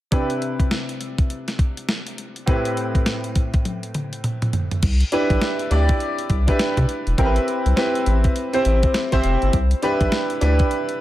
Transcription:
0.11 2.43 C3 medium
0.11 2.43 D4 medium
0.11 2.44 E4 medium
0.11 2.44 G4 medium
0.11 2.44 B4 medium
0.11 kick loud
0.11 closed hi-hat medium
0.30 closed hi-hat medium
0.42 closed hi-hat medium
0.60 kick medium
0.60 closed hi-hat soft
0.71 snare loud
0.71 closed hi-hat medium
0.89 closed hi-hat soft
1.01 closed hi-hat medium
1.18 kick medium
1.18 closed hi-hat soft
1.30 closed hi-hat medium
1.48 snare medium
1.48 closed hi-hat medium
1.59 kick medium
1.59 closed hi-hat medium
1.77 closed hi-hat medium
1.89 snare loud
1.89 closed hi-hat medium
2.07 closed hi-hat medium
2.18 closed hi-hat medium
2.36 closed hi-hat soft
2.46 4.78 A2 medium
2.46 4.79 C4 medium
2.46 4.79 E4 medium
2.46 4.79 G4 medium
2.46 4.79 B4 medium
2.46 kick loud
2.46 closed hi-hat medium
2.65 closed hi-hat medium
2.77 closed hi-hat medium
2.95 kick medium
2.95 closed hi-hat soft
3.06 snare loud
3.06 closed hi-hat medium
3.24 closed hi-hat soft
3.36 kick medium
3.36 closed hi-hat medium
3.54 kick medium
3.54 closed hi-hat medium
3.65 closed hi-hat medium
3.65 high tom medium
3.83 closed hi-hat medium
3.94 closed hi-hat medium
3.94 mid tom medium
4.13 closed hi-hat medium
4.24 closed hi-hat medium
4.24 mid tom medium
4.42 closed hi-hat soft
4.42 mid tom medium
4.53 closed hi-hat medium
4.53 floor tom loud
4.71 closed hi-hat soft
4.71 floor tom medium
4.83 5.04 C2 loud
4.83 kick loud
4.83 closed hi-hat medium
4.83 crash medium
5.00 closed hi-hat medium
5.12 5.65 D4 medium
5.12 5.65 E4 medium
5.12 5.65 G4 medium
5.12 5.65 B4 loud
5.12 closed hi-hat medium
5.30 5.38 B1 medium
5.30 kick medium
5.30 closed hi-hat soft
5.42 snare loud
5.42 closed hi-hat medium
5.59 closed hi-hat soft
5.71 5.92 D2 medium
5.71 6.35 D4 medium
5.71 6.35 E4 medium
5.71 6.36 G4 medium
5.71 6.36 D5 loud
5.71 closed hi-hat medium
5.89 kick medium
5.89 closed hi-hat medium
6.00 closed hi-hat medium
6.19 closed hi-hat medium
6.30 6.51 C2 medium
6.30 kick medium
6.30 closed hi-hat medium
6.47 7.10 D4 medium
6.47 7.10 E4 medium
6.47 7.10 G4 medium
6.47 7.10 B4 medium
6.47 kick medium
6.47 closed hi-hat medium
6.59 snare loud
6.59 closed hi-hat medium
6.77 6.86 C3 loud
6.77 kick loud
6.77 closed hi-hat medium
6.89 closed hi-hat medium
7.07 7.15 E1 medium
7.07 closed hi-hat soft
7.18 7.39 A1 loud
7.18 7.70 C4 medium
7.18 7.71 E4 medium
7.18 7.71 G4 medium
7.18 7.27 A#4 medium
7.18 kick loud
7.18 closed hi-hat medium
7.25 7.74 B4 medium
7.36 closed hi-hat medium
7.48 closed hi-hat medium
7.66 7.74 C2 medium
7.66 closed hi-hat medium
7.76 8.41 C4 medium
7.76 8.41 E4 medium
7.76 8.41 G4 medium
7.76 8.41 B4 medium
7.76 snare loud
7.76 closed hi-hat medium
7.95 closed hi-hat soft
8.06 8.27 A1 medium
8.06 closed hi-hat medium
8.24 kick medium
8.24 closed hi-hat medium
8.36 closed hi-hat medium
8.53 9.02 C4 medium
8.53 9.02 E4 medium
8.53 9.03 G4 medium
8.53 9.03 C5 loud
8.53 closed hi-hat medium
8.65 8.86 A1 medium
8.65 closed hi-hat medium
8.83 kick medium
8.83 closed hi-hat medium
8.94 snare loud
8.94 closed hi-hat medium
9.12 9.21 A1 loud
9.12 9.53 C4 medium
9.12 9.53 E4 medium
9.12 9.54 G4 medium
9.12 9.54 C5 loud
9.12 kick medium
9.12 closed hi-hat medium
9.24 9.37 F1 loud
9.24 closed hi-hat medium
9.42 9.51 G1 loud
9.42 closed hi-hat soft
9.53 9.74 C2 loud
9.53 kick loud
9.53 closed hi-hat medium
9.71 closed hi-hat medium
9.82 10.35 D4 medium
9.82 10.35 E4 medium
9.82 10.35 G4 medium
9.82 10.36 B4 loud
9.82 closed hi-hat medium
10.01 10.09 B1 medium
10.01 kick medium
10.01 closed hi-hat medium
10.12 snare loud
10.12 closed hi-hat medium
10.30 closed hi-hat soft
10.41 10.63 D2 medium
10.41 11.01 D4 medium
10.41 11.01 E4 medium
10.41 11.01 G4 medium
10.41 11.01 B4 loud
10.41 closed hi-hat medium
10.59 kick medium
10.59 closed hi-hat medium
10.71 closed hi-hat medium
10.89 closed hi-hat medium

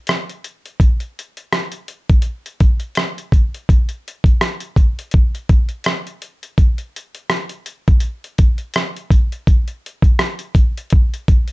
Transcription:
0.07 cross-stick loud
0.07 closed hi-hat medium
0.29 closed hi-hat soft
0.44 closed hi-hat medium
0.66 closed hi-hat soft
0.80 kick loud
0.80 closed hi-hat medium
1.00 closed hi-hat soft
1.19 closed hi-hat medium
1.37 closed hi-hat medium
1.53 cross-stick loud
1.53 closed hi-hat medium
1.72 closed hi-hat medium
1.88 closed hi-hat medium
2.09 kick medium
2.09 closed hi-hat soft
2.22 closed hi-hat medium
2.46 closed hi-hat soft
2.60 kick medium
2.60 closed hi-hat medium
2.80 closed hi-hat soft
2.95 cross-stick loud
2.95 closed hi-hat medium
3.18 closed hi-hat soft
3.32 kick medium
3.32 closed hi-hat medium
3.54 closed hi-hat soft
3.69 kick medium
3.69 closed hi-hat medium
3.89 closed hi-hat soft
4.08 closed hi-hat medium
4.24 kick medium
4.24 closed hi-hat medium
4.41 cross-stick loud
4.41 closed hi-hat medium
4.60 closed hi-hat medium
4.76 kick medium
4.76 closed hi-hat medium
4.99 closed hi-hat medium
5.11 kick medium
5.11 closed hi-hat medium
5.35 closed hi-hat soft
5.49 kick medium
5.49 closed hi-hat medium
5.69 closed hi-hat soft
5.84 cross-stick loud
5.84 closed hi-hat medium
6.07 closed hi-hat soft
6.22 closed hi-hat medium
6.43 closed hi-hat soft
6.58 kick medium
6.58 closed hi-hat medium
6.78 closed hi-hat soft
6.96 closed hi-hat medium
7.15 closed hi-hat soft
7.30 cross-stick loud
7.30 closed hi-hat medium
7.49 closed hi-hat medium
7.66 closed hi-hat medium
7.88 kick medium
7.88 closed hi-hat soft
8.00 closed hi-hat medium
8.24 closed hi-hat soft
8.38 kick medium
8.38 closed hi-hat medium
8.58 closed hi-hat soft
8.74 cross-stick loud
8.74 closed hi-hat medium
8.96 closed hi-hat soft
9.10 kick medium
9.10 closed hi-hat medium
9.32 closed hi-hat soft
9.47 kick loud
9.47 closed hi-hat medium
9.68 closed hi-hat soft
9.86 closed hi-hat medium
10.02 kick loud
10.02 closed hi-hat soft
10.19 cross-stick loud
10.19 closed hi-hat medium
10.39 closed hi-hat medium
10.55 kick medium
10.55 closed hi-hat medium
10.77 closed hi-hat medium
10.90 kick medium
10.90 closed hi-hat medium
11.14 closed hi-hat soft
11.28 kick medium
11.28 closed hi-hat medium
11.48 closed hi-hat soft

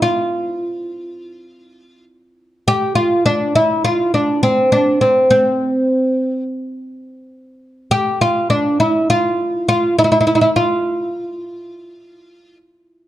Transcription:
0.02 2.04 F4 medium
2.68 2.95 G4 loud
2.95 3.25 F4 medium
3.26 3.55 D4 medium
3.55 3.84 E4 medium
3.85 4.14 F4 medium
4.14 4.42 D4 medium
4.43 4.72 C4 medium
4.72 4.99 D4 medium
5.01 5.29 C4 medium
5.30 6.43 C4 medium
7.91 8.21 G4 loud
8.21 8.50 F4 medium
8.50 8.77 D4 medium
8.80 9.09 E4 medium
9.10 9.67 F4 medium
9.69 9.98 F4 medium
9.99 10.03 E4 medium
10.04 10.11 E4 medium
10.12 10.19 E4 medium
10.21 10.26 E4 medium
10.27 10.34 E4 medium
10.35 10.40 E4 medium
10.41 10.48 E4 medium
10.56 12.57 F4 medium

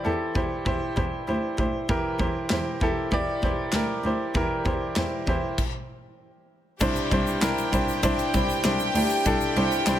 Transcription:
0.00 0.32 E3 medium
0.00 0.04 E4 medium
0.00 0.30 E4 medium
0.00 0.04 G4 medium
0.00 0.37 C5 medium
0.00 3.13 D5 medium
0.04 0.13 E2 medium
0.04 0.30 G4 medium
0.04 0.30 A4 medium
0.35 0.43 E2 medium
0.35 0.61 E4 medium
0.35 0.61 G4 medium
0.35 0.62 C5 medium
0.35 kick medium
0.65 0.74 E2 medium
0.65 0.91 E4 medium
0.65 0.92 G4 medium
0.65 0.92 C5 loud
0.65 kick medium
0.96 1.05 E2 medium
0.96 1.22 E4 medium
0.96 1.22 G4 medium
0.96 1.23 C5 medium
0.96 kick medium
1.28 1.36 D2 medium
1.28 1.53 E4 medium
1.28 1.53 G4 medium
1.28 1.54 C5 medium
1.58 1.66 D2 medium
1.58 1.84 E4 medium
1.58 1.84 G4 medium
1.58 1.85 C5 medium
1.58 kick medium
1.89 1.97 E2 medium
1.89 2.78 E3 medium
1.89 2.15 E4 medium
1.89 2.15 G4 medium
1.89 2.15 A#4 loud
1.89 kick loud
2.19 2.28 E2 medium
2.19 2.45 E4 medium
2.19 2.45 G4 medium
2.19 2.45 C5 medium
2.19 kick medium
2.50 2.59 E2 medium
2.50 2.76 E4 medium
2.50 2.76 G4 medium
2.50 2.77 C5 medium
2.50 snare loud
2.50 clap medium
2.81 2.89 E2 medium
2.81 3.07 E4 medium
2.81 3.07 G4 medium
2.81 3.07 A4 medium
2.81 kick medium
3.12 3.20 E2 medium
3.12 3.38 E4 loud
3.12 3.38 G4 medium
3.12 3.38 D5 loud
3.12 kick medium
3.42 3.50 E2 medium
3.42 3.68 E4 medium
3.42 3.69 G4 medium
3.42 3.69 C5 medium
3.42 kick medium
3.72 3.82 D2 medium
3.72 3.99 E4 medium
3.72 4.00 G4 medium
3.72 4.00 A#4 medium
3.72 snare medium
3.72 clap medium
4.04 4.12 D2 medium
4.04 4.30 E4 medium
4.04 4.30 G4 medium
4.04 4.31 C5 medium
4.35 4.43 E2 medium
4.35 5.24 E3 medium
4.35 4.61 E4 medium
4.35 4.61 G4 medium
4.35 4.61 A#4 loud
4.35 kick medium
4.65 4.74 E2 medium
4.65 4.91 E4 medium
4.65 4.91 G4 medium
4.65 4.92 C5 medium
4.65 kick medium
4.96 5.05 E2 medium
4.96 5.22 E4 medium
4.96 5.22 G4 medium
4.96 5.23 C5 medium
4.96 snare loud
4.96 clap medium
5.27 5.35 E2 medium
5.27 5.53 E4 medium
5.27 5.53 G4 medium
5.27 5.53 C5 medium
5.27 kick medium
5.58 kick medium
5.58 crash medium
6.80 6.89 C2 loud
6.80 7.69 G2 medium
6.80 7.06 D4 loud
6.80 7.06 E4 medium
6.80 9.99 G4 medium
6.80 7.07 C5 loud
6.80 9.99 G5 loud
6.80 kick loud
6.80 crash medium
6.80 shaker medium
6.96 shaker medium
7.11 7.20 C2 loud
7.11 7.37 D4 medium
7.11 7.37 E4 medium
7.11 7.37 C5 medium
7.11 kick medium
7.11 ride medium
7.27 shaker soft
7.41 7.49 C2 medium
7.41 7.67 D4 medium
7.41 7.67 E4 medium
7.41 7.68 A#4 medium
7.41 snare loud
7.41 clap medium
7.41 ride medium
7.41 shaker medium
7.58 ride soft
7.58 shaker soft
7.73 7.81 C2 medium
7.73 7.98 D4 medium
7.73 7.98 E4 medium
7.73 7.98 C5 medium
7.73 kick medium
7.73 ride medium
7.73 shaker medium
7.88 shaker soft
8.03 8.11 C2 loud
8.03 8.28 D4 loud
8.03 8.29 E4 loud
8.03 8.29 C5 loud
8.03 kick medium
8.03 ride medium
8.03 shaker medium
8.19 ride soft
8.19 shaker soft
8.34 8.42 C2 medium
8.34 8.59 D4 medium
8.34 8.60 E4 medium
8.34 8.60 C5 medium
8.34 kick medium
8.34 ride medium
8.34 shaker soft
8.50 shaker soft
8.64 8.72 C2 loud
8.64 8.90 D4 medium
8.64 8.90 E4 medium
8.64 8.90 C5 medium
8.64 snare loud
8.64 clap medium
8.64 ride medium
8.64 shaker medium
8.80 shaker medium
8.94 9.03 D2 medium
8.94 9.20 D4 medium
8.94 9.20 E4 medium
8.94 9.21 G4 medium
8.94 open hi-hat medium
8.94 ride medium
9.10 shaker medium
9.25 9.34 C2 medium
9.25 9.99 G2 medium
9.25 9.51 D4 loud
9.25 9.51 E4 medium
9.25 9.52 A4 loud
9.25 kick loud
9.25 hi-hat pedal medium
9.25 ride medium
9.25 shaker medium
9.41 shaker medium
9.56 9.65 C2 loud
9.56 9.81 D4 medium
9.56 9.82 E4 medium
9.56 9.82 C5 medium
9.56 ride medium
9.72 shaker soft
9.86 9.95 C2 medium
9.86 9.99 D4 medium
9.86 9.99 E4 medium
9.86 9.99 C5 medium
9.86 snare loud
9.86 clap medium
9.86 ride medium
9.86 shaker medium

